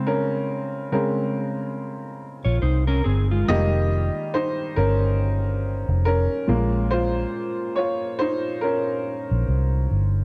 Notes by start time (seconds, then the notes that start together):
Already playing: C#3 G#3 C4 C5
0.07 C#4 A#4
0.92 C#3 G#3 C4 C#4 A#4
2.45 A#1 F4 C#5
2.62 C2 D#4 C5
2.87 C#4 A#4
3.04 G1 C4 G#4
3.31 G#3 F4
3.48 F1 D#3 G3 A#3 G4 D#5
4.34 D#4 C5
4.76 G1 C#4 A#4
5.89 F1
6.05 C#4 A#4
6.47 A#1 A#2 G#3 A#3
6.91 F4 C5
7.76 F4 C#5
8.19 D#4 C5
8.61 C#4 A#4
9.31 A#1
9.48 C2
9.91 G1